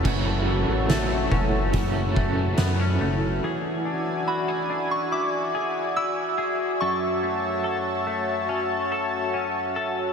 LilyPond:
<<
  \new Staff \with { instrumentName = "Synth bell" } { \time 4/4 \key fis \minor \tempo 4 = 71 r1 | r4 b''8. cis'''16 d'''4 e'''4 | cis'''4. r2 r8 | }
  \new Staff \with { instrumentName = "Analog synth pad" } { \time 4/4 \key fis \minor << { <cis'' a''>1 | <d'' gis''>1 | <cis'' a''>1 | } \\ { <fis' e''>1 | <fis' e''>1~ | <fis' e''>1 | } >> }
  \new Staff \with { instrumentName = "Clean electric guitar" } { \time 4/4 \key fis \minor fis,8 e8 a8 cis'8 cis8 a8 b16 cis'16 a8 | <e gis'>8 d'8 fis'16 gis'16 d'8 e'8 gis'8 e'8 gis'8 | <fis, a'>8 a8 a'8 a8 cis'8 a'8 cis'8 a'8 | }
  \new Staff \with { instrumentName = "Overdriven electric guitar" } { \time 4/4 \key fis \minor <fis, cis e a cis' fis'>4 <e a cis' fis'>4 <fis, cis e a cis' fis'>8 <e a cis' fis'>4. | r1 | r1 | }
  \new Staff \with { instrumentName = "Analog synth bass" } { \clef bass \time 4/4 \key fis \minor fis,,8. a,,8. fis,,8 fis,,4 fis,8 fis,,8 | r1 | r1 | }
  \new DrumStaff \with { instrumentName = "Drums" } \drummode { \time 4/4 <cymc bd>4 <hh sn>8 bd8 <hh bd>8 bd8 <hh sn>4 | r4 r4 r4 r4 | r4 r4 r4 r4 | }
>>